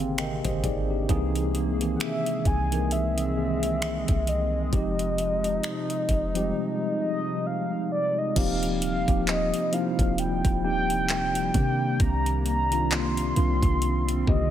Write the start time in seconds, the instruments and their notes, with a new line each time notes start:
Already playing: 808-style bass G#1, analog synth pad C3 C4, tine electric piano D3 D#3 A#3 C4 G4 G#4 F5 G5 G#5 C6
0.18 tine electric piano A#4 D#5 G5, finger snap, closed hi-hat
0.45 808-style bass G#1, tine electric piano G4 C5 D#5, kick, closed hi-hat
0.64 808-style bass G#1, tine electric piano D#4 G#4 D5, kick, closed hi-hat
0.90 tine electric piano D4 G4
1.08 808-style bass C2, tine electric piano E3 A#3 C4 D#4 G#4, analog synth pad G#3 A#3 G#4, kick, closed hi-hat
1.35 closed hi-hat
1.55 closed hi-hat
1.80 tine electric piano D#3 E3 A#3 C4 G#4, closed hi-hat
1.95 soft synth lead F#5
2.00 soft synth lead E5, finger snap, closed hi-hat
2.26 closed hi-hat
2.45 808-style bass C2, soft synth lead G#5, kick, closed hi-hat
2.71 tine electric piano E3 A#3 C4 D#4 A#4, closed hi-hat
2.91 analog synth pad C4, soft synth lead E5, closed hi-hat
3.18 closed hi-hat
3.36 tine electric piano D#3 E3 A#3 C4 G#4
3.63 closed hi-hat
3.82 finger snap, closed hi-hat
4.08 808-style bass C2, kick, closed hi-hat
4.27 soft synth lead D#5, closed hi-hat
4.72 808-style bass F1, analog synth pad C3 F3 D#4, tine electric piano F3 G#3 C4 D#4 G4, kick, closed hi-hat
4.99 closed hi-hat
5.18 closed hi-hat
5.44 closed hi-hat
5.63 finger snap, closed hi-hat
5.90 closed hi-hat
6.09 808-style bass F1, kick, closed hi-hat
6.34 tine electric piano F3 G3 C4 D#4 G4, closed hi-hat
6.41 tine electric piano G#3
7.01 soft synth lead D#5
7.46 soft synth lead F5
7.92 soft synth lead D5
8.18 soft synth lead D#5
8.35 808-style bass D#1, analog synth pad C3 F3 G3, tine electric piano F3 A#3 C4 D#4 G4, soft synth lead F5, kick, closed hi-hat, crash
8.63 closed hi-hat
8.82 soft synth lead F5, closed hi-hat
9.07 808-style bass D#1, tine electric piano F3 A#3 C4 D#4 G4, kick, closed hi-hat
9.27 soft synth lead D#5, clap, closed hi-hat
9.54 closed hi-hat
9.72 tine electric piano F3 A#3 C4 D#4 E4, soft synth lead F5, closed hi-hat
9.80 tine electric piano F4
9.99 808-style bass D#1, kick, closed hi-hat
10.18 soft synth lead G5, closed hi-hat
10.45 808-style bass D#1, kick, closed hi-hat
10.63 tine electric piano F3 A#3 C4 D#4 G4, soft synth lead G5
10.90 closed hi-hat
11.09 clap, closed hi-hat
11.35 closed hi-hat
11.54 808-style bass C3, tine electric piano D#3 A#3 C4 D4 G4, analog synth pad A#3, kick, closed hi-hat
12.00 808-style bass C2, soft synth lead A#5, kick, closed hi-hat
12.26 closed hi-hat
12.46 soft synth lead A#5, closed hi-hat
12.71 tine electric piano D#3 A#3 C4 D4 F4, closed hi-hat
12.91 soft synth lead C6, clap, closed hi-hat
13.17 closed hi-hat
13.35 808-style bass C2, tine electric piano D#3 A#3 C4 D4 F4, analog synth pad C4, closed hi-hat
13.63 808-style bass C2, kick, closed hi-hat
13.82 closed hi-hat
14.09 closed hi-hat
14.26 808-style bass C2, tine electric piano D3 D#3 A#3 C4 G4, soft synth lead D#5, kick